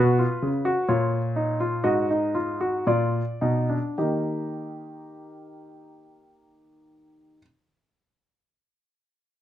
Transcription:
0.00 0.24 B2 medium
0.00 0.17 F#4 medium
0.00 0.85 B4 medium
0.19 0.47 F4 medium
0.42 0.71 C#3 medium
0.65 0.87 F#4 medium
0.89 1.81 A#2 medium
0.89 1.18 F4 medium
0.89 1.81 C#5 medium
1.36 1.59 D#4 medium
1.60 1.84 F4 medium
1.84 2.84 G#2 medium
1.84 2.08 F#4 medium
1.84 2.83 D#5 medium
2.10 2.34 D#4 medium
2.35 2.59 F4 medium
2.61 2.86 F#4 medium
2.87 3.20 A#2 medium
2.87 3.21 F4 medium
2.87 3.94 D5 medium
3.41 3.76 B2 medium
3.41 3.68 D#4 medium
3.70 3.97 D4 medium
3.98 7.36 D#3 medium
3.98 7.40 A#3 soft
3.98 7.40 D#4 soft
3.98 7.36 G4 medium
3.98 7.37 D#5 medium

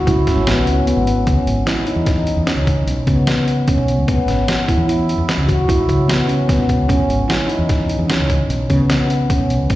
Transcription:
0.07 0.25 C#2 medium
0.07 0.21 E4 medium
0.07 kick medium
0.07 closed hi-hat medium
0.27 0.41 C#4 medium
0.27 kick medium
0.27 snare soft
0.27 closed hi-hat medium
0.36 0.66 G#1 medium
0.47 0.61 B3 medium
0.47 snare loud
0.47 closed hi-hat medium
0.66 0.94 C#2 medium
0.66 0.81 C#4 medium
0.66 closed hi-hat medium
0.87 1.15 B3 medium
0.87 closed hi-hat medium
0.97 1.24 G#1 medium
1.07 closed hi-hat medium
1.27 1.36 C#2 medium
1.27 1.55 C#4 medium
1.27 kick medium
1.27 closed hi-hat medium
1.46 1.65 G#1 medium
1.46 closed hi-hat medium
1.66 1.81 E4 medium
1.66 snare loud
1.66 closed hi-hat medium
1.86 2.01 D#4 medium
1.86 closed hi-hat medium
1.96 2.34 E2 medium
2.06 2.35 D#4 medium
2.06 kick medium
2.06 snare soft
2.06 closed hi-hat medium
2.27 closed hi-hat medium
2.37 2.56 E2 medium
2.46 2.75 C#4 medium
2.46 snare medium
2.46 closed hi-hat medium
2.57 2.85 C#2 medium
2.67 kick medium
2.67 closed hi-hat soft
2.87 3.06 B1 medium
2.87 closed hi-hat medium
3.07 3.74 C#3 medium
3.07 3.21 B3 medium
3.07 kick medium
3.07 closed hi-hat medium
3.27 3.56 B3 medium
3.27 snare medium
3.27 closed hi-hat medium
3.48 closed hi-hat medium
3.68 3.96 C#4 medium
3.68 kick medium
3.68 closed hi-hat medium
3.78 3.98 B1 medium
3.88 closed hi-hat medium
3.98 4.07 C#2 medium
4.08 4.17 C#2 medium
4.08 4.22 B3 medium
4.08 kick medium
4.08 closed hi-hat medium
4.28 4.46 G#1 medium
4.28 4.57 C#4 medium
4.28 snare soft
4.28 closed hi-hat medium
4.48 snare medium
4.48 closed hi-hat medium
4.68 4.82 E4 medium
4.68 kick medium
4.68 closed hi-hat medium
4.78 5.15 E2 medium
4.88 5.16 E4 medium
4.88 closed hi-hat medium
5.09 closed hi-hat medium
5.18 5.36 E2 medium
5.29 snare medium
5.29 closed hi-hat medium
5.38 5.66 C#2 medium
5.48 5.62 F#4 medium
5.48 kick medium
5.48 closed hi-hat medium
5.68 5.87 B1 medium
5.68 5.82 E4 medium
5.68 kick medium
5.68 closed hi-hat medium
5.89 6.55 C#3 medium
5.89 6.03 C#4 medium
5.89 kick medium
5.89 closed hi-hat medium
6.08 6.22 B3 medium
6.08 snare medium
6.08 closed hi-hat medium
6.27 6.42 C#4 medium
6.27 closed hi-hat medium
6.48 6.77 B3 medium
6.48 kick loud
6.48 snare soft
6.48 closed hi-hat medium
6.59 6.78 B1 medium
6.69 kick medium
6.69 closed hi-hat medium
6.78 6.88 C#2 medium
6.88 6.98 C#2 medium
6.88 7.17 C#4 medium
6.88 kick medium
6.88 closed hi-hat medium
7.08 7.27 G#1 medium
7.08 closed hi-hat medium
7.28 7.42 E4 medium
7.28 snare medium
7.28 closed hi-hat medium
7.48 7.63 D#4 medium
7.48 closed hi-hat soft
7.59 7.96 E2 medium
7.69 7.97 D#4 medium
7.69 kick medium
7.69 snare soft
7.69 closed hi-hat medium
7.89 closed hi-hat medium
7.99 8.17 E2 medium
8.08 8.37 C#4 medium
8.08 snare loud
8.08 closed hi-hat medium
8.19 8.47 C#2 medium
8.30 kick medium
8.30 closed hi-hat soft
8.49 8.68 B1 medium
8.49 closed hi-hat medium
8.70 9.36 C#3 medium
8.70 8.84 B3 medium
8.70 kick medium
8.70 closed hi-hat soft
8.90 9.18 B3 medium
8.90 snare loud
8.90 closed hi-hat medium
9.10 closed hi-hat medium
9.30 9.58 C#4 medium
9.30 kick medium
9.30 closed hi-hat medium
9.39 9.59 B1 medium
9.50 closed hi-hat medium
9.59 9.69 C#2 medium
9.70 9.76 C#2 medium
9.70 9.76 B3 medium
9.70 kick loud
9.70 closed hi-hat medium

